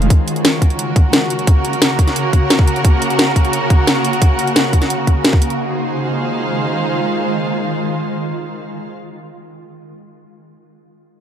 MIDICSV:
0, 0, Header, 1, 4, 480
1, 0, Start_track
1, 0, Tempo, 342857
1, 144, Time_signature, 4, 2, 24, 8
1, 15686, End_track
2, 0, Start_track
2, 0, Title_t, "String section"
2, 0, Program_c, 0, 48
2, 0, Note_on_c, 0, 63, 85
2, 0, Note_on_c, 0, 68, 92
2, 0, Note_on_c, 0, 72, 95
2, 0, Note_on_c, 0, 77, 86
2, 144, Note_off_c, 0, 77, 0
2, 144, Note_on_c, 0, 61, 83
2, 299, Note_on_c, 0, 66, 76
2, 548, Note_on_c, 0, 70, 94
2, 776, Note_off_c, 0, 72, 0
2, 884, Note_off_c, 0, 63, 0
2, 1046, Note_on_c, 0, 78, 89
2, 1278, Note_off_c, 0, 68, 0
2, 7823, Note_off_c, 0, 78, 0
2, 7823, Note_on_c, 0, 63, 75
2, 7824, Note_off_c, 0, 61, 0
2, 7824, Note_off_c, 0, 66, 0
2, 7824, Note_off_c, 0, 70, 0
2, 7897, Note_on_c, 0, 68, 75
2, 7968, Note_on_c, 0, 72, 78
2, 8040, Note_on_c, 0, 77, 78
2, 12298, Note_off_c, 0, 63, 0
2, 12372, Note_off_c, 0, 68, 0
2, 12444, Note_off_c, 0, 72, 0
2, 12516, Note_off_c, 0, 77, 0
2, 15686, End_track
3, 0, Start_track
3, 0, Title_t, "Synth drone"
3, 0, Program_c, 1, 95
3, 147, Note_on_c, 1, 49, 81
3, 147, Note_on_c, 1, 66, 89
3, 148, Note_on_c, 1, 58, 72
3, 7769, Note_off_c, 1, 49, 0
3, 7770, Note_off_c, 1, 58, 0
3, 7770, Note_off_c, 1, 66, 0
3, 7822, Note_on_c, 1, 56, 72
3, 7823, Note_on_c, 1, 51, 80
3, 7823, Note_on_c, 1, 65, 91
3, 12297, Note_off_c, 1, 56, 0
3, 12298, Note_off_c, 1, 51, 0
3, 12299, Note_off_c, 1, 65, 0
3, 15686, End_track
4, 0, Start_track
4, 0, Title_t, "Drums"
4, 25, Note_on_c, 9, 42, 36
4, 144, Note_on_c, 9, 36, 111
4, 146, Note_off_c, 9, 42, 0
4, 146, Note_on_c, 9, 42, 86
4, 284, Note_off_c, 9, 36, 0
4, 286, Note_off_c, 9, 42, 0
4, 386, Note_on_c, 9, 42, 58
4, 506, Note_off_c, 9, 42, 0
4, 506, Note_on_c, 9, 42, 35
4, 626, Note_off_c, 9, 42, 0
4, 626, Note_on_c, 9, 38, 116
4, 626, Note_on_c, 9, 42, 85
4, 766, Note_off_c, 9, 38, 0
4, 766, Note_off_c, 9, 42, 0
4, 864, Note_on_c, 9, 36, 61
4, 866, Note_on_c, 9, 42, 64
4, 985, Note_off_c, 9, 42, 0
4, 985, Note_on_c, 9, 42, 33
4, 1004, Note_off_c, 9, 36, 0
4, 1105, Note_off_c, 9, 42, 0
4, 1105, Note_on_c, 9, 42, 84
4, 1245, Note_off_c, 9, 42, 0
4, 1344, Note_on_c, 9, 36, 101
4, 1345, Note_on_c, 9, 42, 60
4, 1484, Note_off_c, 9, 36, 0
4, 1485, Note_off_c, 9, 42, 0
4, 1584, Note_on_c, 9, 38, 107
4, 1584, Note_on_c, 9, 42, 83
4, 1724, Note_off_c, 9, 38, 0
4, 1724, Note_off_c, 9, 42, 0
4, 1824, Note_on_c, 9, 42, 63
4, 1944, Note_off_c, 9, 42, 0
4, 1944, Note_on_c, 9, 42, 35
4, 2063, Note_off_c, 9, 42, 0
4, 2063, Note_on_c, 9, 36, 108
4, 2063, Note_on_c, 9, 42, 91
4, 2203, Note_off_c, 9, 36, 0
4, 2203, Note_off_c, 9, 42, 0
4, 2305, Note_on_c, 9, 42, 61
4, 2425, Note_off_c, 9, 42, 0
4, 2425, Note_on_c, 9, 42, 35
4, 2544, Note_off_c, 9, 42, 0
4, 2544, Note_on_c, 9, 38, 117
4, 2544, Note_on_c, 9, 42, 92
4, 2684, Note_off_c, 9, 38, 0
4, 2684, Note_off_c, 9, 42, 0
4, 2784, Note_on_c, 9, 36, 59
4, 2784, Note_on_c, 9, 42, 64
4, 2905, Note_off_c, 9, 42, 0
4, 2905, Note_on_c, 9, 38, 34
4, 2905, Note_on_c, 9, 42, 35
4, 2924, Note_off_c, 9, 36, 0
4, 3025, Note_off_c, 9, 42, 0
4, 3025, Note_on_c, 9, 42, 89
4, 3045, Note_off_c, 9, 38, 0
4, 3165, Note_off_c, 9, 42, 0
4, 3264, Note_on_c, 9, 36, 57
4, 3265, Note_on_c, 9, 42, 61
4, 3404, Note_off_c, 9, 36, 0
4, 3405, Note_off_c, 9, 42, 0
4, 3505, Note_on_c, 9, 38, 106
4, 3505, Note_on_c, 9, 42, 80
4, 3623, Note_on_c, 9, 36, 97
4, 3645, Note_off_c, 9, 38, 0
4, 3645, Note_off_c, 9, 42, 0
4, 3745, Note_on_c, 9, 42, 66
4, 3763, Note_off_c, 9, 36, 0
4, 3866, Note_off_c, 9, 42, 0
4, 3866, Note_on_c, 9, 42, 35
4, 3984, Note_on_c, 9, 36, 111
4, 3985, Note_off_c, 9, 42, 0
4, 3985, Note_on_c, 9, 42, 93
4, 4124, Note_off_c, 9, 36, 0
4, 4125, Note_off_c, 9, 42, 0
4, 4225, Note_on_c, 9, 42, 65
4, 4345, Note_off_c, 9, 42, 0
4, 4345, Note_on_c, 9, 42, 39
4, 4465, Note_off_c, 9, 42, 0
4, 4465, Note_on_c, 9, 38, 108
4, 4465, Note_on_c, 9, 42, 92
4, 4605, Note_off_c, 9, 38, 0
4, 4605, Note_off_c, 9, 42, 0
4, 4703, Note_on_c, 9, 36, 58
4, 4705, Note_on_c, 9, 42, 65
4, 4825, Note_off_c, 9, 42, 0
4, 4825, Note_on_c, 9, 42, 37
4, 4843, Note_off_c, 9, 36, 0
4, 4945, Note_off_c, 9, 42, 0
4, 4945, Note_on_c, 9, 42, 93
4, 5085, Note_off_c, 9, 42, 0
4, 5183, Note_on_c, 9, 36, 93
4, 5185, Note_on_c, 9, 42, 61
4, 5323, Note_off_c, 9, 36, 0
4, 5325, Note_off_c, 9, 42, 0
4, 5424, Note_on_c, 9, 38, 104
4, 5424, Note_on_c, 9, 42, 87
4, 5564, Note_off_c, 9, 38, 0
4, 5564, Note_off_c, 9, 42, 0
4, 5664, Note_on_c, 9, 42, 66
4, 5785, Note_off_c, 9, 42, 0
4, 5785, Note_on_c, 9, 42, 37
4, 5903, Note_off_c, 9, 42, 0
4, 5903, Note_on_c, 9, 36, 110
4, 5903, Note_on_c, 9, 42, 97
4, 6043, Note_off_c, 9, 36, 0
4, 6043, Note_off_c, 9, 42, 0
4, 6144, Note_on_c, 9, 42, 65
4, 6264, Note_off_c, 9, 42, 0
4, 6264, Note_on_c, 9, 42, 38
4, 6384, Note_off_c, 9, 42, 0
4, 6384, Note_on_c, 9, 38, 107
4, 6384, Note_on_c, 9, 42, 97
4, 6524, Note_off_c, 9, 38, 0
4, 6524, Note_off_c, 9, 42, 0
4, 6623, Note_on_c, 9, 36, 57
4, 6624, Note_on_c, 9, 42, 67
4, 6743, Note_off_c, 9, 42, 0
4, 6743, Note_on_c, 9, 38, 34
4, 6743, Note_on_c, 9, 42, 38
4, 6763, Note_off_c, 9, 36, 0
4, 6864, Note_off_c, 9, 42, 0
4, 6864, Note_on_c, 9, 42, 93
4, 6883, Note_off_c, 9, 38, 0
4, 7004, Note_off_c, 9, 42, 0
4, 7103, Note_on_c, 9, 36, 55
4, 7104, Note_on_c, 9, 42, 65
4, 7243, Note_off_c, 9, 36, 0
4, 7244, Note_off_c, 9, 42, 0
4, 7344, Note_on_c, 9, 38, 104
4, 7344, Note_on_c, 9, 42, 90
4, 7462, Note_on_c, 9, 36, 94
4, 7484, Note_off_c, 9, 38, 0
4, 7484, Note_off_c, 9, 42, 0
4, 7584, Note_on_c, 9, 42, 68
4, 7602, Note_off_c, 9, 36, 0
4, 7704, Note_off_c, 9, 42, 0
4, 7704, Note_on_c, 9, 42, 38
4, 7844, Note_off_c, 9, 42, 0
4, 15686, End_track
0, 0, End_of_file